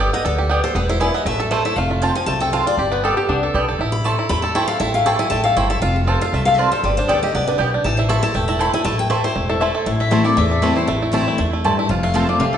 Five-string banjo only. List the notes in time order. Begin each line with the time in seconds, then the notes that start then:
Already playing: G4
0.00 A4
0.13 B3
0.25 A4
0.38 G4
0.49 B3
0.64 A4
0.75 B3
0.90 E4
1.01 E4
1.14 B3
1.26 A3
1.40 A4
1.51 A3
1.66 E4
1.78 A3
1.91 F4
2.03 F4
2.16 F3
2.28 A3
2.42 A4
2.53 F4
2.67 F4
2.79 G4
2.92 B3
3.04 A4
3.17 G4
3.29 B3
3.43 A4
3.55 G4
3.69 A4
3.81 E4
4.05 A4
4.19 E4
4.30 A3
4.44 A4
4.55 E4
4.68 A4
4.81 E4
4.95 A3
5.06 A4
5.19 E4
5.31 A3
5.45 A4
5.57 E4
5.70 A4
5.82 F4
6.07 A4
6.22 F4
6.34 A3
6.48 A4
6.59 F4
6.73 A4
6.85 G3
6.99 D4
7.10 A4
7.24 G4
7.35 B3
7.48 D4
7.60 G4
7.74 D4
7.86 E3
7.99 E4
8.10 A4
8.23 E4
8.35 A3
8.49 E4
8.61 E4
8.74 E4
8.85 A3
9.11 A3
9.24 E4
9.36 A3
9.50 E4
9.62 A3
9.75 A4
9.86 E4
10.01 A3
10.12 E4
10.25 A4
10.37 A3
10.51 A4
10.63 A3
10.77 E4
10.88 A3
11.02 E4
11.14 E4
11.28 A3
11.39 E4
11.53 A3
11.65 E4
11.79 E4
11.91 F4
12.04 A3
12.16 A4
12.29 F4
12.41 A3
12.54 A4